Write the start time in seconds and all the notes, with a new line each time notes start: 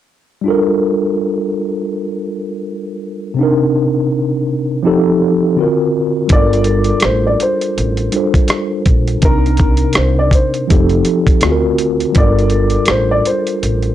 0.42 G3 D4
0.46 F4 A4
0.50 A#4
3.34 C3 C4
3.39 D4 D#4
3.43 A#4
4.83 F3 C4 D#4 G4
4.87 A4
5.56 D3 C4 F4 F#4
5.61 A#4
6.27 G1 G3 D4, kick, closed hi-hat
6.32 F4 A4 D5
6.36 A#4
6.53 closed hi-hat
6.64 closed hi-hat
6.84 closed hi-hat
7.00 cross-stick, closed hi-hat
7.04 A1 C5
7.27 D5
7.40 C5, closed hi-hat
7.61 closed hi-hat
7.77 A1, closed hi-hat
7.97 closed hi-hat
8.12 G3 D4 F4 A4, closed hi-hat
8.16 C5
8.34 kick, closed hi-hat
8.48 cross-stick, closed hi-hat
8.86 A#1, kick, closed hi-hat
9.08 closed hi-hat
9.20 C2 C3 C4, kick, closed hi-hat
9.24 D4 D#4 A#4
9.28 A#4
9.46 closed hi-hat
9.57 kick, closed hi-hat
9.77 closed hi-hat
9.93 cross-stick, closed hi-hat
9.97 C2 C5
10.19 D5
10.31 C5, kick, closed hi-hat
10.54 closed hi-hat
10.68 F1 F3 C4 D#4 G4, kick, closed hi-hat
10.72 A4
10.90 closed hi-hat
11.05 closed hi-hat
11.27 kick, closed hi-hat
11.41 D2 D3 C4 F4 F#4, cross-stick, closed hi-hat
11.45 G#4
11.52 A#4
11.78 closed hi-hat
12.00 closed hi-hat
12.12 G1 G3 D4, kick, closed hi-hat
12.17 F4 A4 D5
12.21 A#4
12.39 closed hi-hat
12.50 closed hi-hat
12.70 closed hi-hat
12.86 cross-stick, closed hi-hat
12.90 A1 C5
13.11 D5
13.26 C5, closed hi-hat
13.47 closed hi-hat
13.63 A1, closed hi-hat
13.83 closed hi-hat